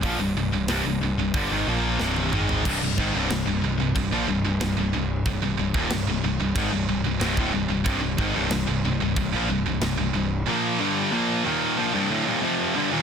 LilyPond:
<<
  \new Staff \with { instrumentName = "Distorted electric guitar" } { \clef bass \time 4/4 \key c \minor \tempo 4 = 92 <bes, f>16 <c, g,>16 <c, g,>16 <c, g,>16 <c, g,>16 <c, g,>16 <c, g,>16 <c, g,>16 <g, d>16 <aes, ees>16 <bes, f bes>8 <c, g, c>8 <aes, ees aes>8 | <c, g,>16 <c, g,>16 <aes, ees>16 <c, g,>16 <c, g,>16 <c, g,>16 <c, g,>16 <c, g,>16 <c, g,>16 <bes, f>16 <c, g,>16 <c, g,>16 <c, g,>16 <c, g,>16 <c, g,>8 | <c, g,>16 <c, g,>16 <c, g,>16 <ees, bes,>16 <c, g,>16 <c, g,>16 <c, g,>16 <c, g,>16 <aes, ees>16 <c, g,>16 <c, g,>16 <c, g,>16 <c, g,>16 <d, a,>16 <c, g,>16 <c, g,>16 | <c, g,>16 <c, g,>16 <aes, ees>16 <c, g,>16 <c, g,>16 <c, g,>16 <c, g,>16 <c, g,>16 <c, g,>16 <bes, f>16 <c, g,>16 <c, g,>16 <c, g,>16 <c, g,>16 <c, g,>8 |
<bes, f bes>8 <g, d g>8 <bes, f bes>8 <ees, bes, ees>8 <bes, f>16 <c, g,>16 <d, a,>16 <ees, bes,>16 <f, c f>8 <g, d>16 <ees, bes,>16 | }
  \new Staff \with { instrumentName = "Distorted electric guitar" } { \clef bass \time 4/4 \key c \minor <bes, f>16 <c, g,>16 <c, g,>16 <c, g,>16 <c, g,>16 <c, g,>16 <c, g,>16 <c, g,>16 <g, d>16 <aes, ees>16 <bes, f bes>8 <c, g, c>8 <aes, ees aes>8 | <c, g,>16 <c, g,>16 <aes, ees>16 <c, g,>16 <c, g,>16 <c, g,>16 <c, g,>16 <c, g,>16 <c, g,>16 <bes, f>16 <c, g,>16 <c, g,>16 <c, g,>16 <c, g,>16 <c, g,>8 | <c, g,>16 <c, g,>16 <c, g,>16 <ees, bes,>16 <c, g,>16 <c, g,>16 <c, g,>16 <c, g,>16 <aes, ees>16 <c, g,>16 <c, g,>16 <c, g,>16 <c, g,>16 <d, a,>16 <c, g,>16 <c, g,>16 | <c, g,>16 <c, g,>16 <aes, ees>16 <c, g,>16 <c, g,>16 <c, g,>16 <c, g,>16 <c, g,>16 <c, g,>16 <bes, f>16 <c, g,>16 <c, g,>16 <c, g,>16 <c, g,>16 <c, g,>8 |
<bes, f bes>8 <g, d g>8 <bes, f bes>8 <ees, bes, ees>8 <bes, f>16 <c, g,>16 <d, a,>16 <ees, bes,>16 <f, c f>8 <g, d>16 <ees, bes,>16 | }
  \new Staff \with { instrumentName = "Distorted electric guitar" } { \clef bass \time 4/4 \key c \minor r1 | <c, g,>16 <c, g,>16 <aes, ees>16 <c, g,>16 <c, g,>16 <c, g,>16 <c, g,>16 <c, g,>16 <c, g,>16 <bes, f>16 <c, g,>16 <c, g,>16 <c, g,>16 <c, g,>16 <c, g,>8 | <c, g,>16 <c, g,>16 <c, g,>16 <ees, bes,>16 <c, g,>16 <c, g,>16 <c, g,>16 <c, g,>16 <aes, ees>16 <c, g,>16 <c, g,>16 <c, g,>16 <c, g,>16 <d, a,>16 <c, g,>16 <c, g,>16 | <c, g,>16 <c, g,>16 <aes, ees>16 <c, g,>16 <c, g,>16 <c, g,>16 <c, g,>16 <c, g,>16 <c, g,>16 <bes, f>16 <c, g,>16 <c, g,>16 <c, g,>16 <c, g,>16 <c, g,>8 |
<bes, f bes>8 <g, d g>8 <bes, f bes>8 <ees, bes, ees>8 <bes, f>16 <c, g,>16 <d, a,>16 <ees, bes,>16 <f, c f>8 <g, d>16 <ees, bes,>16 | }
  \new Staff \with { instrumentName = "Picked electric bass" } { \clef bass \time 4/4 \key c \minor bes,,16 c,,16 c,,16 c,,16 c,,16 c,,16 c,,16 c,,16 g,,16 aes,,16 bes,,8 c,,8 aes,,8 | c,,16 c,,16 aes,,16 c,,16 c,,16 c,,16 c,,16 c,,16 c,,16 bes,,16 c,,16 c,,16 c,,16 c,,16 c,,8 | c,,16 c,,16 c,,16 ees,,16 c,,16 c,,16 c,,16 c,,16 aes,,16 c,,16 c,,16 c,,16 c,,16 d,,16 c,,16 c,,16 | c,,16 c,,16 aes,,16 c,,16 c,,16 c,,16 c,,16 c,,16 c,,16 bes,,16 c,,16 c,,16 c,,16 c,,16 c,,8 |
r1 | }
  \new DrumStaff \with { instrumentName = "Drums" } \drummode { \time 4/4 <hho bd>4 <hho sn>4 <hho bd>4 sn16 tommh16 toml16 tomfh16 | <cymc bd>8 bd8 <cymc sn>4 <cymc bd>4 <cymc sn>4 | <cymc bd>8. bd16 <cymc sn>4 <cymc bd>4 <cymc sn>16 bd8. | <cymc bd>8 bd8 <cymc sn>4 <cymc bd>4 <cymc sn>4 |
r4 r4 r4 r4 | }
>>